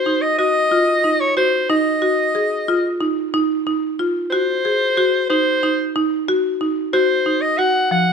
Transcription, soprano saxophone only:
0.00 0.23 C5 medium
0.22 0.38 D#5 medium
0.38 1.22 D#5 loud
1.20 1.36 C#5 medium
1.37 1.67 C5 medium
1.70 2.97 D#5 medium
4.30 5.25 C5 medium
5.30 5.91 C5 medium
6.93 7.43 C5 medium
7.41 7.60 D#5 medium
7.58 7.91 F#5 loud
7.92 8.13 F#5 medium

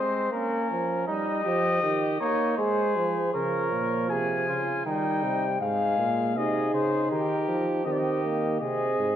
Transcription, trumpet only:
0.00 0.32 C5 medium
0.32 1.06 A#4 medium
1.07 2.18 D#5 loud
2.20 2.57 C#5 loud
2.57 3.32 C5 medium
3.33 4.05 C#5 medium
4.10 4.84 G#5 medium
4.85 5.59 G5 medium
5.61 6.38 F5 medium
6.37 6.74 D#5 medium
6.74 7.10 C5 medium
7.11 7.67 A#4 medium
7.84 7.93 D#5 medium
7.92 8.00 D5 medium
7.98 8.59 D#5 medium
8.60 9.16 D#5 medium

